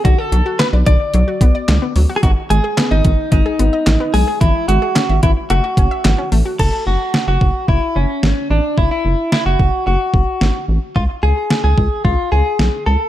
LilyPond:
<<
  \new Staff \with { instrumentName = "Clean electric guitar" } { \time 4/4 \key cis \phrygian \tempo 4 = 110 fis'16 a'8. b'8 d''2 r16. gis'32 | fis'8 gis'8. dis'8. dis'4. gis'8 | e'8 fis'4 e'8 fis'4. r8 | a'8 fis'8. fis'8. e'8 cis'4 d'8 |
e'16 e'8. e'16 fis'8. fis'4. r8 | eis'8 gis'8. gis'8. eis'8 gis'4 a'8 | }
  \new Staff \with { instrumentName = "Synth arpeggio sound" } { \time 4/4 \key cis \phrygian d16 r16 fis16 fis'16 b16 d''16 d16 r16 fis16 fis'16 b16 d''16 d16 b16 fis16 fis'16 | dis16 r16 gis16 gis'16 b16 dis''16 dis16 r16 gis16 gis'16 b16 dis''16 dis16 b16 gis16 gis'16 | e16 r16 gis16 gis'16 cis'16 e''16 e16 r16 a16 fis'16 cis'16 e''16 e16 cis'16 a16 fis'16 | r1 |
r1 | r1 | }
  \new Staff \with { instrumentName = "Analog synth bass" } { \clef bass \time 4/4 \key cis \phrygian b,,16 r16 b,,16 r8 b,,16 b,,16 r16 b,,16 r16 b,,16 r16 cis,16 r16 d,16 r16 | gis,,16 r16 gis,,16 r8 gis,,16 gis,,16 r16 gis,,16 r16 gis,,16 r16 a,,16 r16 b,,16 r16 | gis,,16 r16 gis,,16 r8 gis,,16 gis,,16 r16 fis,,16 r16 fis,,16 r16 gis,,16 r16 a,,16 r16 | fis,,16 r16 fis,,16 r8 fis,,16 fis,,16 r16 fis,,16 r16 fis,,16 r16 gis,,16 r16 a,,16 r16 |
fis,,16 r16 fis,,16 r8 fis,,16 fis,,16 r16 fis,,16 r16 fis,,16 r16 gis,,16 r16 a,,16 r16 | cis,16 r16 cis,16 r8 cis,16 cis,16 r16 cis,16 r16 cis,16 r16 b,,16 r16 cis,16 r16 | }
  \new DrumStaff \with { instrumentName = "Drums" } \drummode { \time 4/4 <hh bd>8 hh8 <hc hh sn>8 <hh bd>8 hh8 <hh bd>8 <hc hh sn>8 hho8 | <hh bd>8 hh8 <hc hh sn>8 <hh bd>8 <hh bd>8 hh8 <hc hh sn>8 hho8 | <hh bd>8 hh8 <hc hh sn>8 <hh bd>8 hh8 <hh bd>8 <hc hh sn>8 hho8 | <cymc bd>4 sn8 bd8 bd4 sn4 |
bd4 sn8 bd8 r8 bd8 sn4 | bd4 sn8 bd8 bd4 sn4 | }
>>